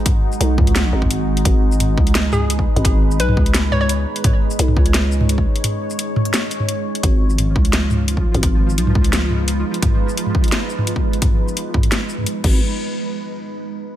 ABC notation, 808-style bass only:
X:1
M:4/4
L:1/16
Q:1/4=172
K:G#dor
V:1 name="808-style bass" clef=bass
z4 B,,,2 C,,3 A,,, G,,,6 | G,,,6 C,,8 z G,,,- | G,,,4 B,,,2 C,,8 z2 | z4 B,,,2 C,,8 z2 |
z16 | G,,,6 C,,8 z G,,,- | G,,,4 B,,,2 C,,8 z2 | z16 |
z12 z2 G,,,2 | z16 |]